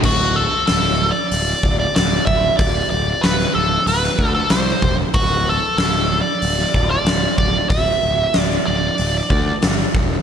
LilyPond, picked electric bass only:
\new Staff \with { instrumentName = "Picked electric bass" } { \clef bass \time 4/4 \key d \mixolydian \tempo 4 = 94 d,,4 d,,4 d,,8 d,,8 d,,8 d,,8 | d,,8 d,,8 d,,8 d,,8 d,,8 d,8 c,8 e,,8 | d,,4 d,,4 d,,8 d,,8 d,,8 d,,8 | d,,8 d,,8 d,,8 d,,8 d,,8 d,8 g,,8 e,,8 | }